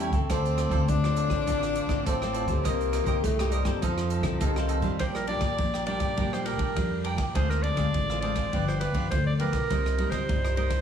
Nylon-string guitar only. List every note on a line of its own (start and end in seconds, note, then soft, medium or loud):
0.00 0.27 E3 medium
0.00 0.11 G3 medium
0.00 0.12 C#4 medium
0.00 0.12 E4 medium
0.13 0.68 C4 medium
0.13 0.69 F4 medium
0.13 0.69 A4 medium
0.31 0.86 D3 medium
0.72 0.98 C4 medium
0.72 0.98 F4 medium
0.72 0.98 A4 medium
0.89 1.45 A2 medium
1.05 1.29 C4 medium
1.05 1.29 F4 medium
1.05 1.29 A4 medium
1.30 1.42 C4 medium
1.30 1.42 F4 medium
1.30 1.42 A4 medium
1.48 2.04 D3 medium
1.48 1.75 C4 medium
1.48 1.76 F4 medium
1.48 1.76 A4 medium
1.90 2.15 C4 medium
1.90 2.16 F4 medium
1.90 2.16 A4 medium
2.07 2.62 A2 medium
2.23 2.47 C4 medium
2.23 2.47 F4 medium
2.23 2.47 A4 medium
2.48 3.03 A#3 medium
2.48 3.04 D#4 medium
2.48 3.04 G4 medium
2.66 3.21 C3 medium
3.07 3.33 A#3 medium
3.07 3.33 D#4 medium
3.07 3.33 G4 medium
3.24 3.80 G2 medium
3.40 3.64 A#3 medium
3.40 3.64 D#4 medium
3.40 3.64 G4 medium
3.66 4.21 C4 medium
3.66 4.21 D#4 medium
3.66 4.21 A4 medium
3.83 4.39 F3 medium
4.24 4.50 C4 medium
4.24 4.50 D#4 medium
4.24 4.50 A4 medium
4.41 4.97 C3 medium
4.57 4.81 C4 medium
4.57 4.81 D#4 medium
4.57 4.81 A4 medium
4.83 5.27 G3 medium
4.83 5.28 D4 medium
4.83 5.28 F4 medium
5.00 5.56 A#2 medium
5.29 5.83 G3 medium
5.29 5.83 D4 medium
5.29 5.83 F4 medium
5.59 6.15 F3 soft
5.87 6.12 G3 medium
5.87 6.13 D4 medium
5.87 6.13 F4 medium
6.18 6.74 A#2 medium
6.18 6.27 G3 medium
6.18 6.27 D4 medium
6.18 6.27 F4 medium
6.33 6.72 G3 medium
6.33 6.72 D4 medium
6.33 6.73 F4 medium
6.77 7.32 F3 medium
6.77 7.14 G3 medium
6.77 7.15 D4 medium
6.77 7.15 F4 medium
7.35 7.91 D3 medium
7.35 7.75 G#3 medium
7.35 7.75 C4 medium
7.35 7.75 F4 medium
7.77 8.17 G#3 medium
7.77 8.18 C4 medium
7.77 8.18 F4 medium
7.95 8.50 D3 medium
8.23 8.48 G#3 soft
8.23 8.48 C4 medium
8.23 8.48 F4 medium
8.54 9.09 G2 medium
8.54 8.81 F3 medium
8.54 8.81 B3 medium
8.54 8.81 D4 medium
8.95 9.35 F3 medium
8.95 9.35 B3 medium
8.95 9.35 D4 medium
9.12 9.68 D3 medium
9.40 9.58 F3 medium
9.40 9.58 B3 medium
9.40 9.58 D4 medium
9.71 10.26 C3 medium
9.71 9.95 G3 medium
9.71 9.95 A#3 soft
9.71 9.96 D#4 medium
9.98 10.16 G3 medium
9.98 10.16 A#3 medium
9.98 10.17 D#4 medium
10.29 10.81 G2 medium
10.29 10.46 G3 medium
10.29 10.46 A#3 medium
10.29 10.47 D#4 medium
10.57 10.81 G3 medium
10.57 10.81 A#3 medium
10.57 10.81 D#4 medium